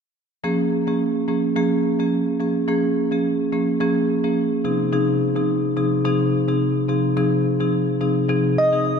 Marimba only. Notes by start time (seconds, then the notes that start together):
0.44 F3 A#3 C#4 G#4
0.87 F3 A#3 C#4 G#4
1.28 F3 A#3 C#4 G#4
1.56 F3 A#3 C#4 G#4
1.99 F3 A#3 C#4 G#4
2.40 F3 A#3 C#4 G#4
2.68 F3 A#3 C#4 G#4
3.11 F3 A#3 C#4 G#4
3.52 F3 A#3 C#4 G#4
3.80 F3 A#3 C#4 G#4
4.24 F3 A#3 C#4 G#4
4.64 C3 F3 C4 D#4 G#4
4.92 C3 F3 C4 D#4 G#4
5.36 C3 F3 C4 D#4 G#4
5.76 C3 F3 C4 D#4 G#4
6.05 C3 F3 C4 D#4 G#4
6.48 C3 F3 C4 D#4 G#4
6.89 C3 F3 C4 D#4 G#4
7.17 C3 F3 C4 D#4 G#4
7.60 C3 F3 C4 D#4 G#4
8.01 C3 F3 C4 D#4 G#4
8.29 C3 F3 C4 D#4 G#4
8.72 C3 F3 C4 D#4 G#4